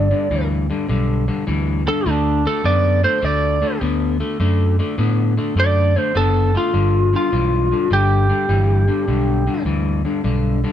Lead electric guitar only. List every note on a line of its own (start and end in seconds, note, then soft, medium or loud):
0.00 0.47 D5 loud
1.88 2.09 A4 medium
2.09 2.45 D4 medium
2.47 2.65 A4 medium
2.66 3.03 D5 medium
3.04 3.25 C5 medium
3.25 3.80 D5 medium
5.60 5.99 D5 medium
5.99 6.16 C5 medium
6.17 6.54 A4 loud
6.57 7.13 F4 medium
7.16 7.90 F4 medium
7.93 9.63 G4 loud